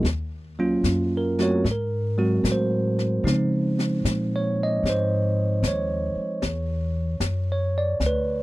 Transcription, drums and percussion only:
0.05 brush sweep, snare
0.84 snare, hi-hat pedal
1.39 snare
1.65 brush sweep, snare
2.45 snare, hi-hat pedal
2.99 snare
3.27 brush sweep, snare
3.79 snare
4.05 snare, hi-hat pedal
4.85 brush sweep, snare
5.63 snare, hi-hat pedal
6.42 brush sweep, snare
7.21 snare, hi-hat pedal
8.00 brush sweep, snare

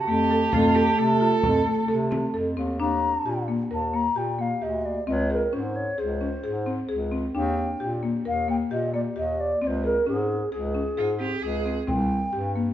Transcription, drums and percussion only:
0.53 frame drum
1.21 frame drum
1.43 frame drum
1.89 frame drum
2.12 frame drum
2.35 frame drum
2.57 frame drum
11.88 frame drum
12.57 frame drum

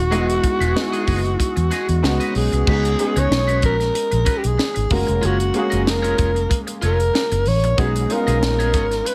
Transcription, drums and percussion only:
0.12 closed hi-hat
0.30 closed hi-hat
0.44 kick, closed hi-hat
0.61 closed hi-hat
0.77 snare
0.93 closed hi-hat
1.07 kick, open hi-hat
1.25 closed hi-hat
1.40 kick, closed hi-hat
1.57 closed hi-hat
1.71 snare, closed hi-hat
1.89 closed hi-hat
2.04 snare
2.21 closed hi-hat
2.35 open hi-hat
2.53 closed hi-hat
2.67 kick, crash
2.85 closed hi-hat
2.99 closed hi-hat
3.16 closed hi-hat
3.32 snare
3.49 closed hi-hat
3.62 kick, closed hi-hat
3.80 snare, closed hi-hat
3.95 closed hi-hat
4.12 closed hi-hat
4.26 kick, closed hi-hat
4.44 closed hi-hat
4.59 snare
4.76 closed hi-hat
4.90 kick, open hi-hat
5.08 closed hi-hat
5.23 closed hi-hat
5.40 closed hi-hat
5.54 closed hi-hat
5.72 closed hi-hat
5.87 snare
6.04 closed hi-hat
6.18 kick, closed hi-hat
6.36 closed hi-hat
6.51 kick, closed hi-hat
6.68 closed hi-hat
6.82 closed hi-hat
7.00 closed hi-hat
7.15 snare
7.32 closed hi-hat
7.46 open hi-hat
7.64 closed hi-hat
7.78 kick, closed hi-hat
7.96 closed hi-hat
8.10 closed hi-hat
8.28 closed hi-hat
8.43 snare
8.60 closed hi-hat
8.74 kick, closed hi-hat
8.91 snare, closed hi-hat
9.06 closed hi-hat

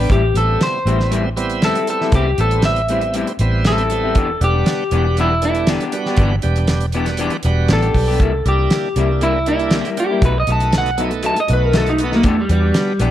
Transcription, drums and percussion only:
0.10 kick, closed hi-hat
0.35 closed hi-hat
0.61 snare, closed hi-hat
0.87 closed hi-hat
1.00 snare
1.12 closed hi-hat
1.37 closed hi-hat
1.50 closed hi-hat
1.62 snare, closed hi-hat
1.75 closed hi-hat
1.87 closed hi-hat
2.01 snare
2.12 kick, closed hi-hat
2.38 closed hi-hat
2.51 closed hi-hat
2.62 snare, closed hi-hat
2.76 closed hi-hat
2.88 closed hi-hat
3.01 closed hi-hat
3.14 closed hi-hat
3.27 closed hi-hat
3.39 closed hi-hat
3.65 snare, closed hi-hat
3.78 closed hi-hat
3.90 closed hi-hat
4.15 kick, closed hi-hat
4.41 closed hi-hat
4.66 snare, closed hi-hat
4.91 closed hi-hat
5.17 closed hi-hat
5.42 closed hi-hat
5.55 closed hi-hat
5.67 snare, closed hi-hat
5.80 closed hi-hat
5.92 closed hi-hat
6.06 snare
6.17 kick, closed hi-hat
6.42 closed hi-hat
6.56 closed hi-hat
6.67 snare, closed hi-hat
6.81 closed hi-hat
6.92 closed hi-hat
7.06 snare, closed hi-hat
7.17 closed hi-hat
7.30 closed hi-hat
7.43 closed hi-hat
7.68 snare, closed hi-hat
7.82 closed hi-hat
7.94 kick, open hi-hat
8.20 kick, closed hi-hat
8.46 closed hi-hat
8.70 snare, closed hi-hat
8.96 closed hi-hat
9.21 closed hi-hat
9.46 closed hi-hat
9.59 closed hi-hat
9.71 snare, closed hi-hat
9.85 closed hi-hat
9.97 closed hi-hat
10.22 kick, closed hi-hat
10.47 closed hi-hat
10.60 closed hi-hat
10.73 snare, closed hi-hat
10.86 closed hi-hat
10.98 closed hi-hat
11.11 closed hi-hat
11.23 closed hi-hat
11.36 closed hi-hat
11.48 closed hi-hat
11.73 snare, closed hi-hat
11.86 closed hi-hat
11.98 closed hi-hat
12.12 snare
12.23 kick, closed hi-hat
12.49 closed hi-hat
12.74 snare, closed hi-hat
12.99 closed hi-hat

